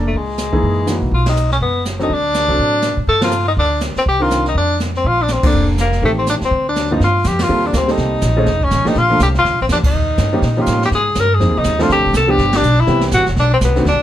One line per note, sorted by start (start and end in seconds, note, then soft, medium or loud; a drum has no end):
0.00 0.11 F1 medium
0.00 0.14 A#3 medium
0.00 0.14 D4 medium
0.00 0.14 A4 medium
0.00 0.15 D5 medium
0.07 0.18 A3 medium
0.14 0.60 C#2 medium
0.14 1.03 G#3 medium
0.14 brush sweep soft
0.14 kick soft
0.38 snare medium
0.38 hi-hat pedal soft
0.52 0.84 E3 medium
0.52 0.85 A#3 medium
0.52 0.85 D#4 medium
0.52 0.86 G#4 medium
0.52 kick soft
0.62 0.99 F#2 medium
0.62 brush sweep soft
0.62 kick soft
0.86 1.11 E3 medium
0.86 1.11 A#3 medium
0.86 1.12 D#4 soft
0.86 1.12 F#4 medium
0.86 snare medium
0.86 hi-hat pedal soft
1.01 1.11 C2 medium
1.11 1.58 B1 medium
1.11 1.27 F4 medium
1.11 brush sweep soft
1.11 kick soft
1.26 1.50 D#4 medium
1.26 snare medium
1.26 ride medium
1.36 hi-hat pedal soft
1.51 1.56 C#4 medium
1.51 snare soft
1.61 2.07 F#1 medium
1.61 1.84 B3 medium
1.61 brush sweep soft
1.61 kick soft
1.85 snare medium
1.85 hi-hat pedal soft
1.99 2.09 F#3 medium
1.99 2.09 C4 medium
1.99 2.09 D4 medium
1.99 2.15 D#4 medium
1.99 2.10 A4 medium
1.99 snare soft
2.10 2.46 D2 medium
2.10 3.00 D4 loud
2.10 brush sweep soft
2.10 kick soft
2.34 snare medium
2.34 hi-hat pedal medium
2.48 2.58 C2 medium
2.48 2.81 F#3 medium
2.48 2.82 C4 medium
2.48 2.82 D4 medium
2.48 2.82 A4 medium
2.59 2.95 A2 medium
2.59 brush sweep soft
2.59 kick soft
2.82 snare medium
2.82 hi-hat pedal medium
2.97 3.07 A2 medium
3.07 3.54 G2 medium
3.07 3.22 A4 loud
3.07 brush sweep soft
3.07 kick soft
3.21 3.31 F3 medium
3.21 3.31 A#3 medium
3.21 3.31 C4 medium
3.21 3.46 F4 medium
3.21 3.32 A4 medium
3.21 snare medium
3.21 ride medium
3.31 hi-hat pedal medium
3.48 3.52 D#4 medium
3.57 3.93 D2 medium
3.57 3.81 D4 loud
3.57 brush sweep soft
3.57 kick soft
3.81 snare medium
3.81 hi-hat pedal medium
3.96 4.02 C4 medium
3.96 muted upright bass stroke soft
3.96 snare soft
4.06 4.53 C2 medium
4.06 4.24 G4 loud
4.06 brush sweep soft
4.06 kick soft
4.20 4.53 D#3 medium
4.20 4.53 C4 medium
4.20 4.53 D4 medium
4.20 4.46 F4 medium
4.20 4.54 A#4 medium
4.30 snare medium
4.30 hi-hat pedal soft
4.46 4.56 D#4 medium
4.46 snare soft
4.55 5.01 F2 medium
4.55 4.79 D4 medium
4.55 brush sweep soft
4.55 kick soft
4.80 snare medium
4.80 hi-hat pedal soft
4.95 5.09 C4 medium
4.95 snare soft
5.04 5.41 A#1 medium
5.04 5.24 F4 loud
5.04 brush sweep soft
5.04 kick soft
5.22 5.33 D4 medium
5.28 5.45 C4 medium
5.28 snare medium
5.28 hi-hat pedal soft
5.43 5.76 D3 medium
5.43 5.76 A#3 medium
5.43 5.76 C4 medium
5.43 5.68 D4 medium
5.43 5.77 A4 medium
5.43 muted upright bass stroke soft
5.43 kick medium
5.43 ride medium
5.54 6.00 F1 medium
5.54 brush sweep soft
5.78 6.02 A#3 medium
5.78 snare medium
5.78 hi-hat pedal medium
5.92 snare soft
6.02 6.38 A1 medium
6.02 6.38 D#3 medium
6.02 6.39 A3 medium
6.02 6.11 A3 medium
6.02 6.39 C4 medium
6.02 6.39 G4 medium
6.02 brush sweep soft
6.02 kick soft
6.19 6.27 C4 medium
6.26 6.35 D4 medium
6.26 snare soft
6.26 hi-hat pedal medium
6.41 6.50 C#2 medium
6.41 6.66 C4 medium
6.41 snare soft
6.51 6.98 D2 medium
6.51 brush sweep soft
6.51 kick soft
6.69 6.95 D4 medium
6.76 snare medium
6.76 hi-hat pedal soft
6.91 6.99 G2 medium
6.91 7.00 F3 medium
6.91 7.00 A#3 medium
6.91 7.00 C4 medium
6.91 7.02 D#4 medium
6.91 7.00 F4 medium
7.00 7.24 G2 medium
7.00 7.29 F4 medium
7.00 brush sweep medium
7.00 kick soft
7.00 snare soft
7.24 7.48 F2 medium
7.24 7.44 G4 medium
7.24 kick soft
7.24 snare medium
7.24 hi-hat pedal soft
7.39 7.68 F4 medium
7.39 snare medium
7.39 ride medium
7.49 7.72 D#2 medium
7.49 7.85 G3 medium
7.49 7.85 A#3 medium
7.49 7.85 C4 soft
7.49 7.86 F4 medium
7.49 7.86 A4 medium
7.49 brush sweep soft
7.66 7.72 D4 medium
7.73 7.97 D2 medium
7.73 7.78 A#3 medium
7.73 7.92 C4 medium
7.73 kick soft
7.73 snare medium
7.73 hi-hat pedal medium
7.88 8.20 G3 medium
7.88 8.21 A#3 medium
7.88 8.21 C4 medium
7.88 8.21 D#4 medium
7.88 8.66 D#4 medium
7.88 8.21 A4 medium
7.88 snare soft
7.97 8.22 C2 medium
7.97 brush sweep soft
7.97 kick soft
7.97 snare soft
8.21 8.45 A#1 medium
8.21 kick soft
8.21 snare medium
8.21 hi-hat pedal medium
8.37 8.46 F3 medium
8.37 8.46 A3 medium
8.37 8.46 C#4 medium
8.37 8.46 D#4 medium
8.37 8.46 G#4 medium
8.46 8.70 F1 medium
8.46 brush sweep soft
8.46 kick soft
8.46 snare soft
8.61 8.90 C#4 medium
8.61 kick soft
8.71 8.84 A1 medium
8.71 kick soft
8.71 snare medium
8.71 hi-hat pedal medium
8.85 8.94 F3 medium
8.85 8.95 A3 medium
8.85 8.95 A#3 medium
8.85 8.95 D4 medium
8.85 8.99 D#4 medium
8.85 8.95 G4 medium
8.85 muted upright bass stroke soft
8.85 snare soft
8.95 9.19 A#1 medium
8.95 9.21 F4 loud
8.95 brush sweep medium
8.95 kick soft
8.95 snare soft
9.10 9.19 F3 medium
9.10 9.20 A3 medium
9.10 9.20 A#3 medium
9.10 9.20 D4 medium
9.10 9.20 A4 medium
9.19 9.43 C2 medium
9.19 9.29 G4 medium
9.19 kick soft
9.19 snare medium
9.19 hi-hat pedal medium
9.34 9.60 F4 medium
9.34 snare soft
9.44 9.52 D2 medium
9.44 brush sweep soft
9.44 kick soft
9.44 snare soft
9.52 9.61 A#1 medium
9.61 9.68 A1 medium
9.61 9.66 C4 medium
9.69 9.83 F2 medium
9.69 9.78 D4 medium
9.69 kick soft
9.69 snare medium
9.69 hi-hat pedal medium
9.84 10.52 D#4 medium
9.84 muted upright bass stroke soft
9.84 kick medium
9.84 crash medium
9.93 10.17 D#2 medium
9.93 brush sweep soft
10.17 10.41 G2 medium
10.17 kick soft
10.17 snare medium
10.17 hi-hat pedal soft
10.33 10.42 F3 medium
10.33 10.42 A#3 medium
10.33 10.42 C#4 medium
10.33 10.42 D#4 medium
10.33 10.42 G4 medium
10.42 10.66 A#2 medium
10.42 brush sweep soft
10.42 kick soft
10.42 snare soft
10.52 10.63 D#4 medium
10.57 10.90 F3 medium
10.57 10.90 A#3 medium
10.57 10.90 C#4 medium
10.57 10.90 D#4 medium
10.57 10.91 G4 medium
10.61 10.84 F4 loud
10.66 10.91 A2 medium
10.66 kick soft
10.66 snare medium
10.66 hi-hat pedal medium
10.82 10.89 G4 medium
10.82 snare soft
10.91 11.15 G#2 medium
10.91 11.21 G#4 loud
10.91 brush sweep medium
10.91 kick soft
10.91 snare soft
11.15 11.39 G2 medium
11.15 kick soft
11.15 snare medium
11.15 hi-hat pedal medium
11.20 11.36 A#4 loud
11.34 11.60 G#4 loud
11.40 11.49 F2 medium
11.40 11.76 F3 medium
11.40 11.77 A#3 medium
11.40 11.77 C4 medium
11.40 11.77 D#4 medium
11.40 11.77 G#4 medium
11.40 brush sweep soft
11.40 kick soft
11.40 snare soft
11.49 11.56 D#2 medium
11.57 11.64 C2 medium
11.57 11.84 D#4 loud
11.64 11.88 D#2 medium
11.64 kick soft
11.64 snare medium
11.64 hi-hat pedal medium
11.79 12.12 F3 medium
11.79 12.12 A3 medium
11.79 12.12 C4 medium
11.79 12.12 D4 medium
11.79 11.91 F4 medium
11.79 12.13 A4 medium
11.79 snare soft
11.89 11.99 D2 medium
11.89 12.14 G4 loud
11.89 brush sweep soft
11.89 kick soft
11.89 snare soft
11.97 12.05 C2 medium
12.06 12.12 A1 medium
12.13 12.37 C2 medium
12.13 12.32 A4 medium
12.13 kick soft
12.13 snare medium
12.13 hi-hat pedal medium
12.27 12.60 F3 medium
12.27 12.61 G3 medium
12.27 12.61 B3 medium
12.27 12.61 D4 medium
12.27 12.61 G4 medium
12.27 12.58 G4 medium
12.38 12.62 G1 medium
12.38 brush sweep soft
12.38 kick soft
12.38 snare soft
12.53 12.82 D4 loud
12.53 snare medium
12.53 ride medium
12.62 12.86 B1 medium
12.62 hi-hat pedal soft
12.80 13.03 E4 loud
12.87 13.11 C2 medium
12.87 13.23 E3 medium
12.87 13.23 G3 medium
12.87 13.24 B3 medium
12.87 13.24 C4 medium
12.87 13.24 G4 medium
12.87 brush sweep soft
12.87 kick soft
12.87 snare soft
13.01 snare medium
13.11 13.20 A1 medium
13.11 13.27 F#4 medium
13.11 kick soft
13.11 snare medium
13.11 hi-hat pedal medium
13.20 13.28 G1 medium
13.26 13.36 E1 medium
13.26 snare soft
13.36 13.60 B1 medium
13.36 13.52 D4 medium
13.36 brush sweep soft
13.36 kick soft
13.36 snare soft
13.54 13.57 C4 medium
13.61 13.85 C2 medium
13.61 13.85 B3 medium
13.61 kick soft
13.61 snare medium
13.61 hi-hat pedal medium
13.75 13.84 D#3 medium
13.75 13.84 A3 medium
13.75 13.85 C4 medium
13.75 13.85 D4 medium
13.75 13.85 F#4 medium
13.75 snare soft
13.85 13.92 D2 medium
13.85 14.03 D4 loud
13.85 brush sweep soft
13.85 kick soft
13.85 snare soft
13.92 14.00 C2 medium